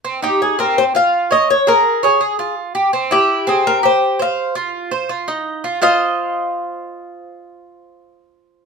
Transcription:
<<
  \new Staff \with { instrumentName = "Cuban tres" } { \time 4/4 \key f \minor \tempo 4 = 166 r8 g'8 aes'8 bes'8 c''8 f''4 ees''8 | des''8 bes'4 aes'4. r4 | r8 g'4 aes'8 bes'8 c''4 f''8~ | f''2.~ f''8 r8 |
f''1~ | f''1 | }
  \new Staff \with { instrumentName = "Cuban tres" } { \time 4/4 \key f \minor c'8 ees'4 c'4 f'4 des''8~ | des''8 aes'4 des''8 aes'8 f'4 g'8 | c'8 e'4 c'4 g'4 c''8~ | c''8 f'4 c''8 f'8 ees'4 f'8 |
<f' c'' ees''>1~ | <f' c'' ees''>1 | }
>>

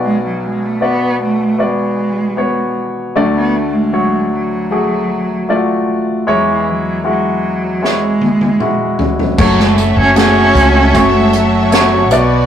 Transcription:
<<
  \new Staff \with { instrumentName = "Analog synth pad" } { \time 4/4 \key fis \minor \tempo 4 = 77 r1 | r1 | r1 | <fis' cis'' fis'' cis'''>2.~ <fis' cis'' fis'' cis'''>8 <fis' d'' b'' d'''>8 | }
  \new Staff \with { instrumentName = "Violin section" } { \time 4/4 \key fis \minor r1 | r1 | r1 | <cis' a' e''>2.~ <cis' a' e''>8 <b fis' d''>8 | }
  \new Staff \with { instrumentName = "Grand piano" } { \time 4/4 \key fis \minor <b fis' d''>4 <b fis' d''>4 <b fis' d''>4 <b fis' cis''>4 | <a fis' d''>4 <fis fis' cis''>4 <a fis' gis'>4 <a eis' fis' d''>4 | <gis e' cis''>4 <gis e' fis'>4 <gis e' cis''>4 <gis e' fis'>4 | <a fis' cis''>4 <a fis' gis'>4 <a fis' cis''>4 <a fis' cis''>8 <b fis' d''>8 | }
  \new Staff \with { instrumentName = "Grand piano" } { \clef bass \time 4/4 \key fis \minor <b,, b,>2.~ <b,, b,>8 r8 | <d, d>1 | <e, e>1 | r2. r8 b,8 | }
  \new Staff \with { instrumentName = "Cello" } { \clef bass \time 4/4 \key fis \minor gis16 fis16 gis16 a16 b8 a8 gis4. r8 | fis16 b16 a16 gis8. fis2 r8 | fis16 e16 fis8 fis4 gis4. r8 | fis16 gis16 a16 cis'16 cis'4 a16 gis16 fis4 r8 | }
  \new Staff \with { instrumentName = "Fretless electric bass" } { \clef bass \time 4/4 \key fis \minor r1 | r1 | r1 | fis,,8. fis,,8. cis,8 fis,,4. b,,8 | }
  \new DrumStaff \with { instrumentName = "Drums" } \drummode { \time 4/4 r4 r4 r4 r4 | r4 r4 r4 r4 | r4 r4 sn8 tommh16 tommh16 toml8 tomfh16 tomfh16 | <cymc bd>16 sn16 hh8 <hh sn>8 <hh bd>8 <hh bd>8 hh8 <hh sn>8 hh8 | }
>>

